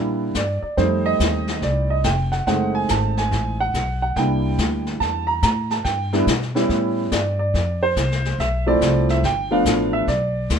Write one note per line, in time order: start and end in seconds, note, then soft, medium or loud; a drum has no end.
0.00 0.34 A#2 medium
0.00 0.32 G3 medium
0.00 0.32 A#3 medium
0.00 0.32 D4 medium
0.00 0.33 E4 medium
0.34 0.60 G2 medium
0.34 0.61 D5 medium
0.34 kick soft
0.34 snare medium
0.34 hi-hat pedal soft
0.62 0.78 D5 medium
0.62 muted upright bass stroke soft
0.77 1.18 F2 medium
0.77 1.95 G3 medium
0.77 1.95 A3 medium
0.77 1.96 C4 soft
0.77 1.96 D#4 medium
0.77 1.06 C5 medium
0.77 brush sweep soft
0.77 kick soft
0.77 snare soft
1.06 1.58 D#5 medium
1.20 1.61 D#2 medium
1.20 kick soft
1.20 snare medium
1.20 hi-hat pedal medium
1.48 snare soft
1.62 2.03 C2 medium
1.62 1.91 D5 medium
1.62 brush sweep soft
1.62 kick soft
1.62 snare soft
1.90 2.05 D#5 medium
2.04 2.45 F1 medium
2.04 2.30 G5 medium
2.04 kick soft
2.04 snare medium
2.04 hi-hat pedal soft
2.32 2.45 F#5 medium
2.32 snare soft
2.47 2.88 F#1 medium
2.47 3.65 G#3 medium
2.47 3.65 A3 soft
2.47 3.65 C4 soft
2.47 3.65 D#4 medium
2.47 2.72 F#5 medium
2.47 brush sweep soft
2.47 kick soft
2.47 snare soft
2.75 2.90 G#5 medium
2.89 3.30 G#1 medium
2.89 3.15 A5 medium
2.89 kick soft
2.89 snare medium
2.89 hi-hat pedal medium
3.17 3.57 G#5 medium
3.17 snare soft
3.31 3.72 A1 medium
3.31 brush sweep soft
3.31 kick soft
3.31 snare soft
3.60 4.01 F#5 medium
3.74 4.15 B1 medium
3.74 kick soft
3.74 snare medium
3.74 hi-hat pedal soft
4.02 4.15 F#5 medium
4.16 4.57 C2 medium
4.16 5.34 G3 soft
4.16 5.34 A#3 soft
4.16 5.35 D4 soft
4.16 5.35 E4 soft
4.16 4.82 G5 medium
4.16 brush sweep soft
4.16 kick soft
4.16 snare soft
4.58 4.99 D2 medium
4.58 kick soft
4.58 snare medium
4.58 hi-hat pedal soft
4.86 snare soft
5.00 5.41 E2 medium
5.00 5.29 A5 medium
5.00 brush sweep soft
5.00 kick soft
5.00 snare soft
5.27 5.41 A#5 medium
5.43 5.84 A2 medium
5.43 5.71 A#5 medium
5.43 kick soft
5.43 snare medium
5.43 hi-hat pedal medium
5.70 5.76 A5 medium
5.70 snare soft
5.85 6.26 G2 medium
5.85 6.24 G5 medium
5.85 brush sweep soft
5.85 kick soft
5.85 snare soft
6.13 6.26 G3 medium
6.13 6.26 B3 medium
6.13 6.26 D4 medium
6.13 6.26 E4 medium
6.13 snare soft
6.27 6.68 B2 medium
6.27 kick soft
6.27 snare medium
6.27 hi-hat pedal medium
6.42 snare soft
6.55 7.09 G3 medium
6.55 7.09 B3 medium
6.55 7.09 C#4 medium
6.55 7.09 E4 medium
6.55 snare soft
6.69 7.10 A2 medium
6.69 brush sweep soft
6.69 kick soft
6.69 snare soft
7.12 7.53 G2 medium
7.12 7.37 D5 medium
7.12 kick soft
7.12 snare medium
7.12 hi-hat pedal medium
7.39 7.83 D5 medium
7.54 7.95 F2 medium
7.54 brush sweep soft
7.54 kick soft
7.54 snare soft
7.83 8.35 C5 medium
7.96 8.37 C2 medium
7.96 kick soft
7.96 snare medium
7.96 hi-hat pedal medium
8.11 snare soft
8.25 snare soft
8.38 8.79 B1 medium
8.38 8.65 E5 medium
8.38 brush sweep soft
8.38 kick soft
8.38 snare soft
8.66 9.20 F3 medium
8.66 9.20 A3 medium
8.66 9.21 C4 medium
8.66 9.21 E4 medium
8.66 9.06 D5 medium
8.81 9.22 C2 medium
8.81 kick soft
8.81 snare medium
8.81 hi-hat pedal medium
9.09 9.23 E5 medium
9.09 snare soft
9.23 9.64 G1 medium
9.23 9.52 G5 medium
9.23 brush sweep soft
9.23 kick soft
9.23 snare soft
9.51 10.05 F3 medium
9.51 10.05 A3 medium
9.51 10.05 B3 medium
9.51 10.05 D4 medium
9.51 9.91 F5 medium
9.65 10.06 A1 medium
9.65 kick soft
9.65 snare medium
9.65 hi-hat pedal medium
9.93 10.07 E5 medium
10.07 10.48 B1 medium
10.07 10.59 D5 medium
10.07 brush sweep soft
10.07 kick soft
10.07 snare soft
10.50 10.59 D2 medium
10.50 kick soft
10.50 snare medium
10.50 hi-hat pedal medium